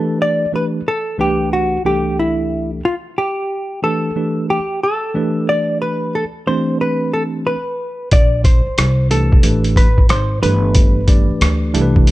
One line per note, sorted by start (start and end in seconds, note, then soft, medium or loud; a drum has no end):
0.00 0.44 E3 medium
0.00 0.44 A3 medium
0.00 0.45 D4 medium
0.00 0.45 G4 medium
0.00 0.21 A4 medium
0.00 0.45 B4 medium
0.22 0.55 D5 loud
0.53 0.79 E3 medium
0.53 0.80 A3 medium
0.53 0.80 D4 medium
0.53 0.80 G4 medium
0.53 0.80 B4 medium
0.53 0.64 B4 medium
0.88 1.18 A4 loud
1.18 1.76 C2 medium
1.18 1.76 E3 medium
1.18 1.76 A3 medium
1.18 1.76 D4 medium
1.18 1.76 G4 medium
1.18 1.53 G4 medium
1.18 1.76 B4 medium
1.53 1.83 F#4 medium
1.84 2.79 C2 medium
1.84 2.80 E3 medium
1.84 2.80 A3 medium
1.84 2.80 D4 medium
1.84 2.80 G4 medium
1.84 2.16 G4 medium
1.84 2.80 A4 medium
2.19 2.70 E4 medium
2.85 2.94 F4 medium
3.18 3.83 G4 medium
3.83 4.09 E3 medium
3.83 4.09 A3 medium
3.83 4.09 D4 medium
3.83 4.10 G4 medium
3.83 4.50 A4 medium
3.83 4.10 B4 medium
4.16 4.58 E3 medium
4.16 4.58 A3 medium
4.16 4.58 D4 medium
4.16 4.58 G4 medium
4.16 4.58 B4 medium
4.50 4.83 G4 medium
4.83 5.51 A4 medium
5.14 6.22 E3 medium
5.14 6.23 A3 medium
5.14 6.23 D4 medium
5.14 6.23 G4 medium
5.14 6.23 B4 medium
5.49 5.81 D5 loud
5.82 6.15 B4 medium
6.15 6.24 A4 medium
6.47 7.54 E3 medium
6.47 7.55 A3 medium
6.47 7.55 C4 medium
6.47 7.55 D4 medium
6.47 7.55 G4 medium
6.47 6.78 C5 medium
6.81 7.11 B4 medium
7.14 7.22 A4 medium
7.47 8.08 B4 medium
8.11 8.64 A#1 loud
8.11 8.44 D5 medium
8.11 kick loud
8.11 closed hi-hat medium
8.44 9.07 C5 medium
8.44 kick medium
8.44 closed hi-hat medium
8.66 muted upright bass stroke soft
8.78 9.40 C2 medium
8.78 cross-stick loud
8.78 closed hi-hat medium
9.10 9.42 E3 medium
9.10 9.42 A3 medium
9.10 9.42 D4 medium
9.10 9.43 G4 medium
9.10 9.79 A4 medium
9.10 9.43 B4 medium
9.10 closed hi-hat medium
9.32 kick medium
9.43 10.06 A1 medium
9.43 9.85 E3 medium
9.43 9.85 A3 medium
9.43 9.85 D4 medium
9.43 9.85 G4 medium
9.43 9.86 B4 medium
9.43 closed hi-hat medium
9.64 closed hi-hat medium
9.76 10.08 B4 medium
9.76 kick medium
9.76 closed hi-hat medium
9.98 kick medium
10.09 10.41 G#1 medium
10.09 10.42 C5 medium
10.09 cross-stick medium
10.09 closed hi-hat medium
10.42 11.26 G1 medium
10.42 10.99 E3 medium
10.42 10.99 A3 medium
10.42 10.99 D4 medium
10.42 11.00 G4 medium
10.42 10.52 A4 medium
10.42 12.11 B4 medium
10.42 closed hi-hat medium
10.50 11.03 B4 medium
10.75 kick loud
10.75 closed hi-hat medium
11.07 11.72 E3 medium
11.07 11.73 A3 medium
11.07 11.73 D4 medium
11.07 11.73 G4 medium
11.07 11.75 D5 medium
11.07 kick medium
11.07 closed hi-hat medium
11.30 muted upright bass stroke soft
11.41 11.73 D2 medium
11.41 cross-stick loud
11.41 closed hi-hat medium
11.74 12.11 C2 medium
11.74 12.11 E3 medium
11.74 12.11 A3 medium
11.74 12.11 D4 medium
11.74 12.11 G4 medium
11.74 11.83 A4 medium
11.74 closed hi-hat medium
11.82 12.11 B4 loud
11.96 kick medium
12.07 closed hi-hat medium